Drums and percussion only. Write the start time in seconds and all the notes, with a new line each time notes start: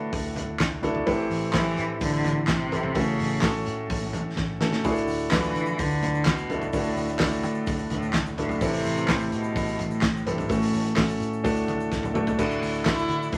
0.13 kick, hi-hat pedal, open hi-hat
0.36 floor tom, hi-hat pedal, open hi-hat
0.59 kick, snare, clap, hi-hat pedal, open hi-hat
0.83 floor tom, hi-hat pedal, open hi-hat
0.95 floor tom
1.07 kick, hi-hat pedal, open hi-hat
1.30 hi-hat pedal, open hi-hat
1.53 kick, snare, clap, hi-hat pedal, open hi-hat
1.77 hi-hat pedal, open hi-hat
2.01 kick, hi-hat pedal, open hi-hat
2.24 floor tom, hi-hat pedal, open hi-hat
2.47 kick, snare, clap, hi-hat pedal, open hi-hat
2.72 floor tom, hi-hat pedal, open hi-hat
2.83 floor tom
2.95 kick, hi-hat pedal, open hi-hat
3.19 hi-hat pedal, open hi-hat
3.41 kick, snare, clap, hi-hat pedal, open hi-hat
3.65 hi-hat pedal, open hi-hat
3.90 kick, hi-hat pedal, open hi-hat
4.13 floor tom, hi-hat pedal, open hi-hat
4.37 kick, snare
4.61 snare
4.73 snare
4.84 kick, hi-hat pedal, open hi-hat, shaker
4.96 hi-hat pedal, shaker
5.07 hi-hat pedal, open hi-hat, shaker
5.19 shaker
5.31 kick, snare, clap, hi-hat pedal, open hi-hat, shaker
5.43 shaker
5.54 hi-hat pedal, open hi-hat, shaker
5.66 shaker
5.79 kick, hi-hat pedal, open hi-hat, shaker
5.90 shaker
6.03 floor tom, hi-hat pedal, open hi-hat, shaker
6.15 shaker
6.25 kick, snare, clap, hi-hat pedal, open hi-hat, shaker
6.38 shaker
6.50 floor tom, hi-hat pedal, open hi-hat
6.62 floor tom, shaker
6.73 kick, hi-hat pedal, open hi-hat, shaker
6.84 open hi-hat, shaker
6.96 hi-hat pedal, open hi-hat, shaker
7.08 hi-hat pedal, shaker
7.19 kick, snare, clap, hi-hat pedal, open hi-hat, shaker
7.31 shaker
7.43 hi-hat pedal, open hi-hat, shaker
7.54 shaker
7.67 kick, hi-hat pedal, open hi-hat, shaker
7.78 shaker
7.90 floor tom, hi-hat pedal, open hi-hat, shaker
8.02 shaker
8.13 kick, snare, clap, hi-hat pedal, open hi-hat, shaker
8.26 shaker
8.38 floor tom, hi-hat pedal, open hi-hat
8.49 floor tom, open hi-hat, shaker
8.61 kick, hi-hat pedal, open hi-hat, shaker
8.73 hi-hat pedal, open hi-hat, shaker
8.85 hi-hat pedal, open hi-hat, shaker
8.97 hi-hat pedal, shaker
9.08 kick, snare, clap, hi-hat pedal, open hi-hat, shaker
9.20 shaker
9.32 hi-hat pedal, open hi-hat, shaker
9.43 shaker
9.56 kick, hi-hat pedal, open hi-hat, shaker
9.68 shaker
9.79 floor tom, hi-hat pedal, open hi-hat, shaker
9.91 shaker
10.01 kick, snare, clap, hi-hat pedal, open hi-hat, shaker
10.17 shaker
10.26 floor tom, hi-hat pedal, open hi-hat
10.38 floor tom, open hi-hat, shaker
10.49 kick, hi-hat pedal, open hi-hat, shaker
10.62 hi-hat pedal, open hi-hat, shaker
10.74 hi-hat pedal, open hi-hat, shaker
10.85 hi-hat pedal, shaker
10.96 kick, snare, clap, hi-hat pedal, open hi-hat, shaker
11.09 shaker
11.20 hi-hat pedal, open hi-hat, shaker
11.33 shaker
11.45 kick, hi-hat pedal, open hi-hat, shaker
11.56 shaker
11.68 floor tom, hi-hat pedal, open hi-hat, shaker
11.80 shaker
11.92 kick, snare, shaker
12.03 high tom, shaker
12.15 mid tom, shaker
12.27 floor tom, shaker
12.39 kick, crash, shaker
12.51 shaker
12.62 hi-hat pedal, open hi-hat, shaker
12.75 shaker
12.85 kick, snare, clap, hi-hat pedal, open hi-hat, shaker
12.98 shaker
13.09 hi-hat pedal, open hi-hat, shaker
13.22 shaker
13.32 kick, hi-hat pedal, open hi-hat, shaker